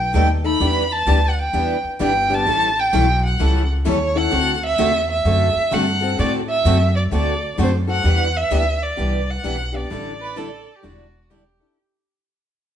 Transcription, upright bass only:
0.00 0.13 B1 medium
0.14 0.59 D#2 medium
0.60 1.06 E2 medium
1.06 1.52 D2 medium
1.53 1.81 E2 medium
1.84 muted upright bass stroke soft
2.00 2.45 G1 medium
2.46 2.91 A1 medium
2.93 3.38 B1 medium
3.40 3.85 C#2 medium
3.87 4.31 D#2 medium
4.33 4.77 D2 medium
4.79 5.24 E2 medium
5.25 5.52 F#2 medium
5.55 muted upright bass stroke soft
5.72 6.17 G2 medium
6.19 6.64 A2 medium
6.65 7.10 F#2 medium
7.11 7.56 D2 medium
7.58 8.03 F#2 medium
8.04 8.41 E2 medium
8.51 8.90 D2 medium
8.98 9.37 C2 medium
9.44 9.84 B1 medium
9.91 10.65 A1 medium
10.84 11.58 E1 medium

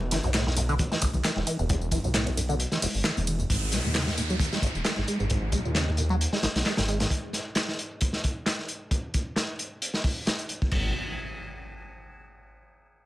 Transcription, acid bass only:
0.12 0.18 E3 medium
0.24 0.30 F#2 medium
0.34 0.44 A2 medium
0.47 0.50 E2 medium
0.57 0.61 F#2 medium
0.69 0.75 D3 loud
0.91 0.97 E3 medium
1.02 1.06 E1 loud
1.24 1.31 E3 medium
1.36 1.40 E2 medium
1.47 1.57 E3 medium
1.59 1.65 E2 medium
1.69 1.76 E2 medium
1.92 1.99 E3 medium
2.04 2.10 F#2 medium
2.14 2.25 A2 medium
2.27 2.30 E2 medium
2.37 2.41 F#2 medium
2.49 2.55 D3 loud
2.72 2.78 E3 medium
2.82 2.86 E1 loud
3.05 3.11 E3 medium
3.17 3.20 E2 medium
3.27 3.37 E3 medium
3.40 3.45 E2 medium
3.50 3.57 G#2 medium
3.73 3.79 G#3 medium
3.85 3.91 A#2 medium
3.95 4.05 C#3 medium
4.08 4.11 G#2 medium
4.18 4.22 A#2 medium
4.30 4.36 F#3 loud
4.53 4.58 G#3 medium
4.63 4.67 G#1 loud
4.85 4.92 G#3 medium
4.98 5.01 G#2 medium
5.08 5.18 G#3 medium
5.20 5.26 G#2 medium
5.30 5.37 G#2 medium
5.53 5.60 G#3 medium
5.65 5.71 A#2 medium
5.75 5.86 C#3 medium
5.88 5.91 G#2 medium
5.98 6.02 A#2 medium
6.10 6.16 F#3 loud
6.33 6.38 G#3 medium
6.43 6.47 G#1 loud
6.66 6.72 G#3 medium
6.78 6.81 G#2 medium
6.88 6.98 G#3 medium
7.00 7.06 G#2 medium

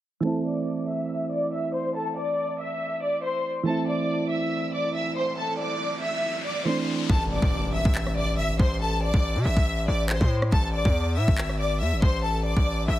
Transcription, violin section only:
0.24 0.43 A4 medium
0.24 0.43 A5 medium
0.45 0.86 D5 medium
0.45 0.86 D6 medium
0.88 1.28 E5 medium
0.88 1.29 E6 medium
1.31 1.50 D5 medium
1.31 1.51 D6 medium
1.52 1.71 E5 medium
1.52 1.72 E6 medium
1.74 1.93 C5 medium
1.74 1.93 C6 medium
1.95 2.15 A4 medium
1.95 2.14 A5 medium
2.17 2.57 D5 medium
2.17 2.57 D6 medium
2.60 3.00 E5 medium
2.60 3.00 E6 medium
3.02 3.22 D5 medium
3.02 3.22 D6 medium
3.24 3.43 C5 medium
3.24 3.43 C6 medium
3.67 3.86 A4 medium
3.67 3.86 A5 medium
3.88 4.28 D5 medium
3.88 4.29 D6 medium
4.31 4.71 E5 medium
4.31 4.72 E6 medium
4.74 4.93 D5 medium
4.74 4.93 D6 medium
4.95 5.14 E5 medium
4.95 5.15 E6 medium
5.17 5.36 C5 medium
5.17 5.36 C6 medium
5.38 5.58 A4 medium
5.38 5.57 A5 medium
5.60 6.00 D5 medium
5.60 6.00 D6 medium
6.03 6.43 E5 medium
6.03 6.43 E6 medium
6.45 6.64 D5 medium
6.45 6.65 D6 medium
6.67 6.86 C5 medium
6.67 6.86 C6 medium
7.09 7.29 A4 medium
7.09 7.29 A5 medium
7.31 7.71 D5 medium
7.31 7.72 D6 medium
7.74 8.14 E5 medium
7.74 8.15 E6 medium
8.17 8.36 D5 medium
8.17 8.36 D6 medium
8.38 8.57 E5 medium
8.38 8.58 E6 medium
8.60 8.79 C5 medium
8.60 8.79 C6 medium
8.81 9.01 A4 medium
8.81 9.00 A5 medium
9.03 9.43 D5 medium
9.03 9.43 D6 medium
9.45 9.86 E5 medium
9.45 9.86 E6 medium
9.88 10.07 D5 medium
9.88 10.08 D6 medium
10.10 10.29 C5 medium
10.10 10.29 C6 medium
10.52 10.72 A4 medium
10.52 10.72 A5 medium
10.74 11.14 D5 medium
10.74 11.15 D6 medium
11.17 11.57 E5 medium
11.17 11.57 E6 medium
11.60 11.79 D5 medium
11.60 11.79 D6 medium
11.81 12.00 E5 medium
11.81 12.01 E6 medium
12.02 12.22 C5 medium
12.02 12.22 C6 medium
12.24 12.43 A4 medium
12.24 12.43 A5 medium
12.45 12.85 D5 medium
12.45 12.86 D6 medium
12.88 12.99 E5 medium
12.88 12.99 E6 medium

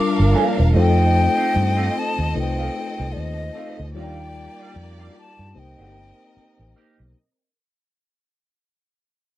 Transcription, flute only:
0.00 0.34 D6 medium
0.80 2.01 G5 loud
1.99 2.38 A5 loud
2.39 3.14 G5 medium
3.13 3.22 D5 medium
3.20 3.81 D#5 loud
4.01 4.89 G5 loud
5.20 5.60 A5 medium
5.59 6.77 G5 medium

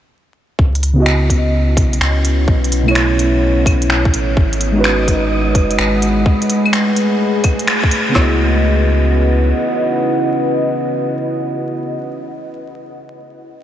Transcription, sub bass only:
0.59 1.78 C#2 loud
1.77 1.99 B1 medium
2.00 2.47 C#2 medium
2.48 4.15 B1 medium
4.14 4.36 A1 medium
4.37 5.56 G#1 loud
5.55 5.77 F#1 medium
5.79 6.25 G#1 medium
8.15 9.53 C#2 medium

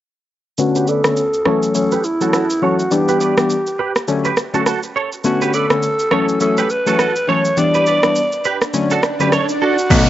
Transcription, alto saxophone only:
0.60 0.90 F#4 medium
0.88 1.75 A4 loud
1.76 2.06 A4 loud
2.05 2.64 E4 loud
2.63 2.94 F#4 medium
2.92 4.08 G4 medium
5.25 5.56 F#4 medium
5.54 6.41 A4 loud
6.42 6.72 A4 loud
6.71 7.31 B4 loud
7.29 7.60 C#5 loud
7.59 8.75 D5 loud
9.63 10.10 F#4 medium

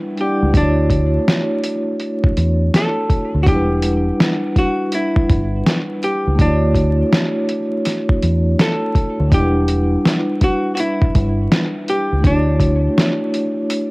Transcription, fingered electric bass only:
0.42 0.53 C#2 medium
0.55 1.17 D2 medium
2.37 2.68 E2 medium
3.34 3.45 D2 medium
3.47 4.10 E1 medium
5.30 5.61 G1 medium
6.27 6.38 C#2 medium
6.40 7.02 D2 loud
8.23 8.54 E2 medium
9.20 9.30 D2 medium
9.32 9.95 E1 loud
11.15 11.47 G1 medium
12.12 12.23 C#2 medium
12.24 12.87 D2 medium

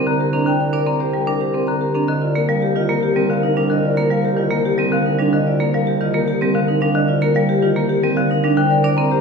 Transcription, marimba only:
0.07 0.23 D3 medium
0.33 0.50 C4 medium
0.46 0.64 D3 medium
0.73 0.91 D4 medium
0.86 1.04 C4 medium
1.14 1.31 G3 medium
1.27 1.45 D4 medium
1.55 1.72 C4 medium
1.68 1.85 D3 medium
1.95 2.12 C4 medium
2.08 2.26 D3 loud
2.35 2.53 A#3 medium
2.49 2.66 G3 loud
2.76 2.93 D#3 medium
2.89 3.07 A#3 medium
3.16 3.34 G3 medium
3.29 3.47 D3 medium
3.57 3.74 G3 medium
3.70 3.88 D3 loud
3.97 4.15 A#3 medium
4.10 4.28 G3 medium
4.37 4.55 D#3 medium
4.51 4.69 A#3 loud
4.78 4.96 G3 medium
4.92 5.10 D3 medium
5.18 5.36 G3 medium
5.33 5.50 D3 loud
5.60 5.77 A#3 medium
5.74 5.91 G3 medium
6.01 6.18 D#3 medium
6.14 6.31 A#3 loud
6.42 6.59 G3 medium
6.55 6.72 D3 loud
6.82 6.99 G3 medium
6.95 7.12 D3 loud
7.22 7.39 A#3 medium
7.36 7.53 G3 loud
7.62 7.80 D#3 medium
7.76 7.94 A#3 loud
8.03 8.21 G3 medium
8.17 8.34 D3 loud
8.44 8.61 G3 medium
8.57 8.75 D3 loud
8.84 9.02 D4 medium
8.98 9.15 C4 loud

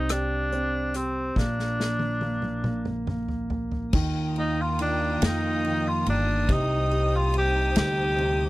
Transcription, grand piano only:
0.00 0.53 C4 medium
0.00 0.10 G4 soft
0.10 0.93 G4 medium
0.53 1.34 C4 soft
0.95 1.35 G4 soft
1.36 1.78 A#3 medium
1.80 2.20 A#3 soft
2.22 2.63 A#3 soft
2.65 3.07 A#3 soft
3.08 3.50 A#3 soft
3.51 3.92 A#3 soft
3.95 4.79 D#3 medium
4.38 5.21 A#3 soft
4.80 5.63 D#3 soft
5.23 6.06 A#3 medium
5.65 6.47 D#3 medium
6.07 6.48 A#3 medium
6.50 7.33 C3 medium
6.92 7.75 G3 medium
7.34 8.17 C3 soft
7.76 8.49 G3 medium
8.19 8.49 C3 medium

